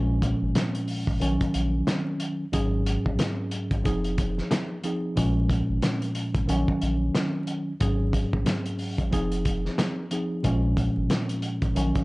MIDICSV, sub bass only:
0, 0, Header, 1, 2, 480
1, 0, Start_track
1, 0, Key_signature, -5, "minor"
1, 0, Tempo, 659341
1, 1844, Time_signature, 4, 2, 24, 8
1, 8767, End_track
2, 0, Start_track
2, 0, Title_t, "Sub bass"
2, 0, Program_c, 0, 38
2, 0, Note_on_c, 0, 34, 111
2, 248, Note_off_c, 0, 34, 0
2, 306, Note_on_c, 0, 32, 91
2, 391, Note_off_c, 0, 32, 0
2, 783, Note_on_c, 0, 32, 91
2, 869, Note_off_c, 0, 32, 0
2, 889, Note_on_c, 0, 34, 104
2, 1004, Note_off_c, 0, 34, 0
2, 1027, Note_on_c, 0, 34, 47
2, 1067, Note_off_c, 0, 34, 0
2, 1128, Note_on_c, 0, 34, 95
2, 1331, Note_off_c, 0, 34, 0
2, 1848, Note_on_c, 0, 32, 115
2, 2168, Note_off_c, 0, 32, 0
2, 2229, Note_on_c, 0, 34, 89
2, 2313, Note_off_c, 0, 34, 0
2, 2702, Note_on_c, 0, 32, 86
2, 2789, Note_off_c, 0, 32, 0
2, 2808, Note_on_c, 0, 29, 107
2, 3215, Note_off_c, 0, 29, 0
2, 3768, Note_on_c, 0, 34, 110
2, 4089, Note_off_c, 0, 34, 0
2, 4145, Note_on_c, 0, 32, 92
2, 4231, Note_off_c, 0, 32, 0
2, 4622, Note_on_c, 0, 32, 89
2, 4709, Note_off_c, 0, 32, 0
2, 4727, Note_on_c, 0, 34, 100
2, 4844, Note_off_c, 0, 34, 0
2, 4867, Note_on_c, 0, 34, 47
2, 4906, Note_off_c, 0, 34, 0
2, 4968, Note_on_c, 0, 34, 92
2, 5170, Note_off_c, 0, 34, 0
2, 5688, Note_on_c, 0, 32, 114
2, 6008, Note_off_c, 0, 32, 0
2, 6068, Note_on_c, 0, 34, 86
2, 6152, Note_off_c, 0, 34, 0
2, 6542, Note_on_c, 0, 32, 85
2, 6629, Note_off_c, 0, 32, 0
2, 6647, Note_on_c, 0, 29, 106
2, 7054, Note_off_c, 0, 29, 0
2, 7607, Note_on_c, 0, 34, 110
2, 7928, Note_off_c, 0, 34, 0
2, 7986, Note_on_c, 0, 32, 89
2, 8071, Note_off_c, 0, 32, 0
2, 8462, Note_on_c, 0, 32, 91
2, 8549, Note_off_c, 0, 32, 0
2, 8567, Note_on_c, 0, 34, 105
2, 8683, Note_off_c, 0, 34, 0
2, 8705, Note_on_c, 0, 34, 49
2, 8745, Note_off_c, 0, 34, 0
2, 8767, End_track
0, 0, End_of_file